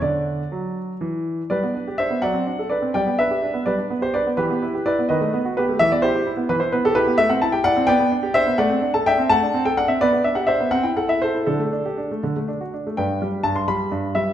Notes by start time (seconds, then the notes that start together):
0.02 D3 D4 D5
0.52 F#3
1.01 E3
1.50 G3 B4 D5
1.63 B3
1.74 D4
1.87 G4
1.98 D4 C5 E5
2.10 B3
2.22 F#3 D5 F#5
2.34 C4
2.47 D4
2.59 A4
2.70 D4 B4 D5
2.82 C4
2.94 G3 D5 G5
3.06 B3
3.19 D4 B4 E5
3.31 G4
3.42 D4
3.54 B3
3.66 G3 B4 D5
3.78 D4
3.90 B3
4.02 G4 C5
4.14 D4 B4 D5
4.26 B3
4.37 E3 G4 B4
4.50 B3
4.62 E4
4.74 G4
4.86 E4 B4 D5
4.99 B3
5.09 D#3 B4 D#5
5.21 A3
5.33 B3
5.45 F#4
5.57 B3 G4 B4
5.69 A3
5.79 E3 E5
5.92 B3 D5
6.02 E4 G4 C5
6.15 G4
6.27 E4
6.37 B3
6.49 E3 B4
6.60 E4 C5
6.72 B3 B4
6.84 G4 A4
6.95 E4 G4 B4
7.07 B3
7.18 A3 E5
7.29 C4 F#5
7.42 E4 A5
7.52 G4 G5
7.64 E4 D5 F#5
7.77 C4
7.87 B3 D5 G5
7.99 B3
8.11 D4
8.23 G4
8.34 D4 C5 E5
8.47 B3
8.58 A3 D5 F#5
8.70 C4
8.81 D4
8.94 A4 A5
9.06 D4 E5 G5
9.18 C4
9.30 A3 F#5 A5
9.42 D4
9.54 C4
9.65 A4 G5
9.77 D4 F#5
9.88 C4 E5
10.01 B3 B4 D5
10.13 B3
10.24 D4 E5
10.35 G4 F#5
10.47 D4 C5 E5
10.60 B3
10.71 C4 F#5
10.83 E4 G5
10.97 A4 F#5
11.09 E4 E5
11.22 A4 C5
11.35 E4
11.47 D3 D4 A4
11.59 A3
11.72 D4
11.85 G4
11.97 D4
12.11 A3
12.23 D3
12.36 A3
12.48 D4
12.61 F#4
12.74 D4
12.87 A3
12.97 G2 D4 B4 G5
13.22 G3
13.43 G2 A5
13.56 C6
13.68 G3 B5
13.92 G2
14.15 G3 E5